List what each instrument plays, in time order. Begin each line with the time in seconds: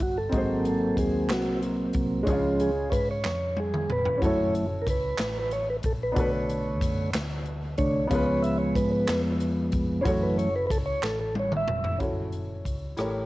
Already playing: upright piano D3 C#4 D4 F#4 A4 C#5
0.00 fingered electric bass G1, tonewheel organ F#4, kick
0.18 tonewheel organ A4
0.29 fingered electric bass G#1, tonewheel organ F#3, upright piano C4 D#4 F#4, kick, closed hi-hat
0.33 upright piano G#2 G#4 C5, tonewheel organ A#3 C4
0.65 tonewheel organ A4, closed hi-hat
0.97 fingered electric bass D#2, tonewheel organ G#4, kick, closed hi-hat
1.29 fingered electric bass C2, tonewheel organ F#4, snare, clap, closed hi-hat
1.62 closed hi-hat
1.93 fingered electric bass C2, kick, closed hi-hat
2.23 upright piano C#3 G#3 C#4 D4, closed hi-hat
2.27 fingered electric bass C#2, tonewheel organ F3 G#3 C#4, upright piano G#4 C#5, kick
2.33 upright piano F4
2.60 tonewheel organ G#4, closed hi-hat
2.90 fingered electric bass G#2, tonewheel organ B4 C#5, kick, closed hi-hat
3.11 tonewheel organ C#5
3.24 fingered electric bass F2, snare, clap
3.57 tonewheel organ G#4, high tom
3.74 mid tom
3.90 fingered electric bass F1, tonewheel organ B4, mid tom
4.05 floor tom
4.18 fingered electric bass F#1, upright piano C#4 E4
4.22 tonewheel organ F#3 A3 E4, upright piano F#4 A4 C#5, kick, closed hi-hat
4.27 tonewheel organ C#5
4.55 closed hi-hat
4.82 tonewheel organ A#4
4.86 fingered electric bass C#2, tonewheel organ B4, kick, closed hi-hat
5.18 fingered electric bass A1, snare, clap, closed hi-hat
5.39 tonewheel organ B4
5.51 tonewheel organ C#5, closed hi-hat
5.70 tonewheel organ B4
5.83 fingered electric bass A#1, tonewheel organ A4, kick, closed hi-hat
6.03 tonewheel organ B4
6.12 upright piano B2 B3 D4 F#4
6.16 fingered electric bass B1, tonewheel organ D3 A3 C#5, upright piano A4 B4, kick, closed hi-hat
6.50 closed hi-hat
6.81 fingered electric bass F#2, kick, closed hi-hat
7.13 fingered electric bass D2, snare, clap, closed hi-hat
7.46 closed hi-hat
7.78 fingered electric bass C2, tonewheel organ D3 A3 D4 C#5, kick, closed hi-hat
8.07 fingered electric bass C#2, upright piano C#3 B3 C#4 F4, tonewheel organ F3 G#3 B3, kick, closed hi-hat
8.13 upright piano G#4 B4
8.26 tonewheel organ C#5
8.43 tonewheel organ E5, closed hi-hat
8.58 tonewheel organ C#5
8.75 fingered electric bass G#2, tonewheel organ B4, kick, closed hi-hat
8.92 tonewheel organ B4
9.07 fingered electric bass F2, snare, clap, closed hi-hat
9.40 closed hi-hat
9.72 fingered electric bass F1, kick, closed hi-hat
10.01 upright piano C#4 E4 F#4, tonewheel organ C5
10.05 fingered electric bass F#1, tonewheel organ E3 F#3 A3 C#5, upright piano A4 C#5, kick, closed hi-hat
10.23 tonewheel organ B4
10.38 tonewheel organ C#5, closed hi-hat
10.56 tonewheel organ B4
10.67 fingered electric bass C#2, tonewheel organ A4 B4, kick
10.71 closed hi-hat
10.86 tonewheel organ C#5
11.03 fingered electric bass A1, tonewheel organ A4, snare, clap
11.21 tonewheel organ A4
11.35 high tom
11.39 tonewheel organ C#5
11.52 mid tom
11.57 tonewheel organ E5
11.68 fingered electric bass F1, mid tom
11.84 floor tom
11.98 fingered electric bass F#1, upright piano C#4 E4 F#4 A4, kick, closed hi-hat
12.02 upright piano C#5
12.32 closed hi-hat
12.65 fingered electric bass C#2, kick, closed hi-hat
12.97 fingered electric bass A1, upright piano A2 E4 G4 A4 A#4 C#5, cross-stick, closed hi-hat